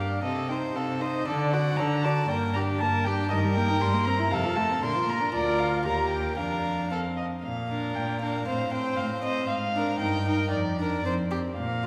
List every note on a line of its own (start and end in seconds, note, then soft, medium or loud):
0.00 0.18 G2 soft
0.00 0.23 D4 soft
0.00 0.23 G4 soft
0.00 0.22 F5 medium
0.23 0.69 C3 soft
0.23 0.51 C4 soft
0.23 0.53 A4 soft
0.23 0.48 D#5 medium
0.49 0.77 D#4 soft
0.49 0.78 C5 soft
0.49 0.57 G5 medium
0.75 1.20 C3 soft
0.75 1.02 C4 soft
0.75 1.02 A4 soft
0.75 1.00 F5 soft
1.00 1.26 D#4 soft
1.00 1.26 C5 soft
1.00 1.27 D#5 soft
1.25 1.72 D3 soft
1.25 1.54 D4 soft
1.25 1.55 A4 soft
1.25 1.53 D5 medium
1.51 1.81 F#4 soft
1.51 1.81 D5 soft
1.51 1.78 F#5 medium
1.77 2.23 D3 soft
1.77 2.06 D4 soft
1.77 2.06 A4 soft
1.77 2.05 A#5 medium
2.04 2.29 F#4 soft
2.04 2.30 D5 soft
2.04 2.28 A5 medium
2.29 2.74 G2 soft
2.29 2.57 A#3 soft
2.29 2.57 A#4 soft
2.29 2.37 G5 medium
2.54 2.83 D4 soft
2.54 2.82 G4 soft
2.54 2.62 A#5 medium
2.79 3.25 G2 soft
2.79 3.08 A#3 soft
2.79 3.08 A#4 soft
2.79 3.05 A5 medium
3.04 3.31 D4 soft
3.04 3.31 G4 soft
3.04 3.29 G5 medium
3.30 3.71 G2 medium
3.30 3.46 D#3 medium
3.30 4.35 A#4 medium
3.30 3.38 D#5 medium
3.44 3.58 G3 soft
3.54 3.71 A#3 medium
3.54 3.83 G5 medium
3.70 3.81 D#4 soft
3.81 4.21 G2 medium
3.81 3.95 G3 medium
3.81 4.07 C6 medium
3.94 4.08 A#3 soft
4.06 4.20 C4 soft
4.06 4.33 A#5 medium
4.19 4.31 E4 soft
4.31 4.72 F2 medium
4.31 4.46 C3 medium
4.31 4.86 A4 soft
4.31 4.58 F5 medium
4.45 4.58 F3 soft
4.56 4.72 A3 soft
4.56 4.82 A5 medium
4.70 4.81 C4 soft
4.82 5.23 A#2 medium
4.82 4.97 D3 soft
4.82 5.34 A#4 soft
4.82 5.11 C6 medium
4.95 5.09 F3 soft
5.07 5.22 A#3 soft
5.07 5.34 A#5 medium
5.21 5.33 D4 soft
5.33 5.86 D2 soft
5.33 5.87 F4 soft
5.33 5.82 A#4 soft
5.33 5.60 D5 medium
5.59 5.84 F5 medium
5.84 6.39 D#2 soft
5.84 6.38 G4 soft
5.84 6.37 A#4 soft
5.84 6.10 A#5 medium
6.10 6.38 G5 soft
6.37 7.24 F2 soft
6.37 6.93 D4 soft
6.37 6.90 A#4 soft
6.37 6.89 F5 soft
6.89 7.24 C4 soft
6.89 6.99 A4 soft
6.89 7.15 F5 soft
7.17 7.25 D#5 soft
7.43 7.90 A#2 soft
7.43 7.96 F5 medium
7.69 8.21 D4 soft
7.69 8.20 A#4 soft
7.95 8.41 A#2 soft
7.95 8.20 G5 medium
8.20 8.47 D4 soft
8.20 8.47 A#4 soft
8.20 8.45 F5 medium
8.45 8.92 A2 soft
8.45 8.72 C4 soft
8.45 8.73 C5 soft
8.45 8.73 F5 medium
8.71 9.22 C4 soft
8.71 9.23 C5 soft
8.71 8.96 G5 medium
8.96 9.43 A2 soft
8.96 9.04 F5 medium
9.22 9.49 C4 soft
9.22 9.49 C5 soft
9.22 9.48 D#5 medium
9.48 9.94 G#2 medium
9.48 9.98 F5 medium
9.74 9.99 D4 soft
9.74 10.01 A#4 soft
9.99 10.46 G2 medium
9.99 10.25 D#4 medium
9.99 10.26 A#4 soft
9.99 10.51 G5 medium
10.25 10.51 D#4 soft
10.25 10.53 A#4 soft
10.51 10.98 F2 medium
10.51 11.03 D5 medium
10.78 11.04 D4 soft
10.78 11.05 A#4 soft
11.05 11.51 F2 soft
11.05 11.30 C4 soft
11.05 11.14 C5 soft
11.31 11.56 C4 soft
11.31 11.39 G4 soft
11.56 11.87 A#2 soft
11.56 11.87 F5 medium
11.83 11.87 D4 soft
11.83 11.87 F4 soft